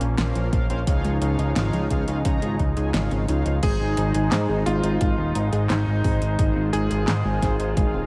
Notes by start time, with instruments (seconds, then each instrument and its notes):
Already playing: analog synth pad F3 A#3 C#4
0.01 analog synth bass A#1, synth arpeggio sound C#4, closed hi-hat
0.18 analog synth bass A#1, analog polysynth C#4 F4 A#4 C5 F5, synth arpeggio sound F4, snare, closed hi-hat
0.35 analog synth bass A#1, synth arpeggio sound F3, closed hi-hat
0.52 analog synth bass A#1, synth arpeggio sound A#3, analog polysynth C#4 F4 A#4 C5 F5, kick, closed hi-hat
0.70 analog synth bass A#1, synth arpeggio sound C4, analog polysynth C#4 F4 A#4 C5 F5, closed hi-hat
0.87 analog synth bass C#2, analog synth pad C#3 G#3 D#4, synth arpeggio sound F3, analog polysynth D#4 F4 G#4 C#5 F5, kick, closed hi-hat
1.04 analog synth bass C#2, synth arpeggio sound G#3, closed hi-hat
1.21 analog synth bass C#2, synth arpeggio sound C#4, analog polysynth D#4 F4 G#4 C#5 F5, closed hi-hat
1.39 analog synth bass C#2, synth arpeggio sound D#4, closed hi-hat
1.56 analog synth bass G#1, analog polysynth D#4 F4 G#4 C#5 F5, synth arpeggio sound F4, snare, closed hi-hat
1.73 analog synth bass C#2, synth arpeggio sound F3, closed hi-hat
1.90 analog synth bass C#2, synth arpeggio sound G#3, analog polysynth D#4 F4 G#4 C#5 F5, kick, closed hi-hat
2.08 analog synth bass C#2, synth arpeggio sound C#4, analog polysynth D#4 F4 G#4 C#5 F5, closed hi-hat
2.25 analog synth bass C#2, synth arpeggio sound F3, analog polysynth D#4 F4 G#4 C#5 A#5, kick, closed hi-hat
2.42 analog synth bass G#1, synth arpeggio sound G#3, closed hi-hat
2.59 analog synth bass C#2, synth arpeggio sound D#4, kick, closed hi-hat
2.77 analog synth bass C#2, synth arpeggio sound G#3, analog polysynth D#4 F4 G#4 C#5 G#5, closed hi-hat
2.94 analog synth bass G#1, analog polysynth D#4 F4 G#4 C#5 F5, synth arpeggio sound F4, snare, closed hi-hat
3.11 analog synth bass G#1, synth arpeggio sound C#4, closed hi-hat
3.28 analog synth bass C#2, synth arpeggio sound D#4, analog polysynth D#4 F4 G#4 C#5 F5, closed hi-hat
3.46 analog synth bass C#2, synth arpeggio sound F3, closed hi-hat
3.63 analog synth bass G#1, analog synth pad D#3 G#3 D#4, synth arpeggio sound G#3, analog polysynth D#4 C5, electric grand piano G#4, fm electric piano G#5, kick, closed hi-hat, crash
3.80 analog synth bass G#1, synth arpeggio sound C4
3.97 analog synth bass G#1, synth arpeggio sound D#4, analog polysynth D#4 G#4 C5, closed hi-hat
4.14 analog synth bass G#1, synth arpeggio sound G#4, closed hi-hat
4.32 analog synth bass G#2, analog polysynth D#4 G#4 C5, synth arpeggio sound C5, snare, clap, closed hi-hat
4.49 analog synth bass G#1, synth arpeggio sound G#3
4.66 analog synth bass G#1, synth arpeggio sound C4, analog polysynth D#4 G#4 C5, electric grand piano F4, fm electric piano F5, closed hi-hat
4.84 analog synth bass G#1, synth arpeggio sound D#4, analog polysynth D#4 G#4 C5, closed hi-hat
5.01 analog synth bass G#1, synth arpeggio sound G#3, analog polysynth D#4 G#4 F5, kick, closed hi-hat
5.18 analog synth bass D#1, synth arpeggio sound C4
5.35 analog synth bass G#1, synth arpeggio sound D#4, closed hi-hat
5.53 analog synth bass G#1, analog polysynth D#4 G#4 D#5, synth arpeggio sound G#4, closed hi-hat
5.69 analog synth bass G#1, electric grand piano D#4, analog polysynth D#4 G#4 C5, synth arpeggio sound C5, fm electric piano D#5, snare, clap, closed hi-hat
5.87 analog synth bass G#1, synth arpeggio sound G#3
6.04 analog synth bass G#1, synth arpeggio sound C4, analog polysynth D#4 G#4 C5, kick, open hi-hat
6.22 analog synth bass G#1, synth arpeggio sound D#4, closed hi-hat
6.39 analog synth bass G#1, synth arpeggio sound G#3, analog polysynth D#4 G#4 C5, analog synth pad F4, kick, closed hi-hat
6.56 analog synth bass G#1, synth arpeggio sound C4
6.73 analog synth bass G#1, synth arpeggio sound D#4, analog polysynth D#4 G#4 C5, electric grand piano G#4, fm electric piano G#5, closed hi-hat
6.90 analog synth bass G#1, synth arpeggio sound G#4, closed hi-hat
7.08 analog synth bass G#2, analog polysynth D#4 G#4 C5, synth arpeggio sound C5, snare, clap, closed hi-hat
7.25 analog synth bass G#1, synth arpeggio sound G#3
7.42 analog synth bass G#1, synth arpeggio sound C4, analog polysynth D#4 G#4 C5, kick, snare, closed hi-hat
7.60 analog synth bass G#1, synth arpeggio sound D#4, analog polysynth D#4 G#4 C5, closed hi-hat
7.77 analog synth bass G#1, synth arpeggio sound G#3, analog polysynth D#4 G#4 F5, kick, closed hi-hat
7.94 analog synth bass D#1, synth arpeggio sound C4